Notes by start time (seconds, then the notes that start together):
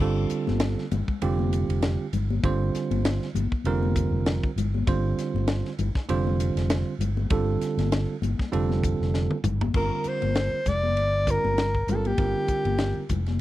0.00 G1 D3 G3 C4 F4 A4
0.30 muted fretless electric bass stroke, hi-hat pedal, ride
0.47 G1, snare, high conga
0.60 snare, ride
0.78 snare
0.91 G1, hi-hat pedal, ride, high conga, low conga
1.07 muted fretless electric bass stroke, kick
1.22 F1 D3 G3 C4 F4 G4, ride
1.39 high conga
1.53 hi-hat pedal, ride
1.69 F1, ride
1.82 snare, ride
2.13 G1, hi-hat pedal, ride, low conga
2.31 high conga
2.43 G1 D3 G3 C4 F4 C5, kick, ride
2.75 muted fretless electric bass stroke, snare, hi-hat pedal, ride
2.91 G1, ride, high conga
3.05 snare, ride
3.22 snare
3.35 G1, hi-hat pedal, ride, high conga, low conga
3.52 muted fretless electric bass stroke, kick
3.64 F1 D3 G3 C4 F4 A#4, ride
3.83 high conga
3.96 kick, hi-hat pedal, ride
4.11 F1
4.26 snare, ride
4.43 kick
4.56 G1, hi-hat pedal, ride, low conga
4.74 high conga
4.87 G1 D3 G3 C4 F4 C5, kick, ride
5.18 muted fretless electric bass stroke, snare, hi-hat pedal, ride
5.34 G1, high conga
5.48 snare, ride
5.65 snare
5.79 G1, hi-hat pedal, ride, low conga
5.95 muted fretless electric bass stroke, kick, snare
6.09 F1 D3 G3 C4 F4 C5, ride
6.27 high conga
6.40 hi-hat pedal, ride
6.55 F1, snare, ride
6.70 snare, ride
6.99 G1, hi-hat pedal, ride, low conga
7.17 high conga
7.30 G1 D3 G3 C4 F4 A4, kick, ride
7.61 muted fretless electric bass stroke, snare, hi-hat pedal, ride
7.77 G1, snare, ride, high conga
7.92 snare, ride
8.22 G1, hi-hat pedal, ride, high conga, low conga
8.39 muted fretless electric bass stroke, kick, snare
8.52 F1 D3 G3 C4 F4 A4, ride
8.70 snare, high conga
8.84 kick, hi-hat pedal, ride
9.00 F1, snare
9.14 snare
9.31 high tom
9.44 G1, hi-hat pedal, mid tom, low conga
9.61 floor tom, high conga
9.74 G1 D3 G3 C4 F4 A#4, kick, crash
10.04 muted fretless electric bass stroke, hi-hat pedal, ride
10.08 C5
10.22 G1, ride, high conga
10.35 snare, ride
10.53 muted fretless electric bass stroke
10.66 F1 D5, kick, snare, hi-hat pedal, ride, low conga
10.83 high conga
10.95 G1, ride
11.26 D3 G3 C4 F4 A#4, kick, hi-hat pedal, ride
11.31 A#4
11.44 G1, high conga
11.58 snare, ride
11.75 kick
11.87 G1 D3 G3 C4 F4 A#4, hi-hat pedal, ride, low conga
11.91 G4
11.96 A4
12.05 G4, ride, high conga
12.17 G1 D3 G3 C4 F4 A#4, kick, ride
12.48 muted fretless electric bass stroke, kick, hi-hat pedal, ride
12.65 G1, ride, high conga
12.78 snare, ride
12.97 muted fretless electric bass stroke
13.09 F1, kick, hi-hat pedal, ride, low conga
13.26 snare, ride, high conga